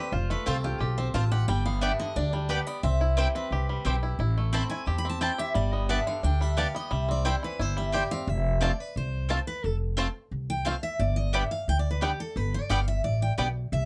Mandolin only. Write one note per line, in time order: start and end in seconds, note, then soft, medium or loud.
0.46 0.55 C4 medium
0.46 0.56 F4 loud
0.46 0.56 C5 loud
0.46 0.56 A5 loud
1.14 1.23 C4 medium
1.14 1.23 F4 medium
1.14 1.24 C5 medium
1.14 1.24 A5 medium
1.81 1.91 B3 medium
1.81 1.91 G4 loud
1.81 1.91 D5 loud
1.81 1.92 G5 loud
2.49 2.59 B3 medium
2.49 2.59 G4 medium
2.49 2.59 D5 medium
2.49 2.59 G5 medium
3.17 3.26 C4 loud
3.17 3.27 E4 medium
3.17 3.27 C5 loud
3.17 3.27 G5 loud
3.85 3.94 C4 medium
3.85 3.95 E4 medium
3.85 3.95 C5 medium
3.85 3.95 G5 medium
4.53 4.62 C4 loud
4.53 4.63 E4 loud
4.53 4.63 C5 loud
4.53 4.63 A5 loud
5.21 5.30 C4 medium
5.21 5.31 E4 medium
5.21 5.31 C5 medium
5.21 5.31 A5 medium
5.89 5.99 B3 loud
5.89 5.99 G4 medium
5.89 5.99 D5 medium
5.89 5.99 A5 loud
6.57 6.66 B3 medium
6.57 6.67 G4 medium
6.57 6.67 D5 medium
6.57 6.67 A5 medium
7.25 7.34 C4 loud
7.25 7.35 E4 loud
7.25 7.35 C5 loud
7.25 7.35 G5 loud
7.92 8.02 C4 medium
7.92 8.02 E4 medium
7.92 8.03 C5 loud
7.92 8.03 G5 medium
8.61 8.70 C4 loud
8.61 8.70 F4 loud
8.61 8.71 C5 loud
8.61 8.71 A5 loud
9.29 9.38 C4 medium
9.29 9.39 F4 medium
9.29 9.39 C5 medium
9.29 9.39 A5 medium
9.97 10.06 C4 loud
9.97 10.07 F4 loud
9.97 10.07 C5 loud
9.97 10.07 A5 loud
10.65 10.74 C4 medium
10.65 10.75 F4 medium
10.65 10.75 C5 medium
10.65 10.75 A5 medium
11.33 11.42 B3 medium
11.33 11.43 G4 loud
11.33 11.43 D5 loud
11.33 11.43 G5 loud
12.01 12.11 B3 medium
12.01 12.11 G4 medium
12.01 12.11 D5 medium
12.01 12.11 G5 medium
12.70 12.79 B3 loud
12.70 12.79 G4 loud
12.70 12.79 D5 loud
12.70 12.80 G5 loud
13.38 13.47 B3 medium
13.38 13.47 G4 medium
13.38 13.47 D5 medium
13.38 13.47 G5 medium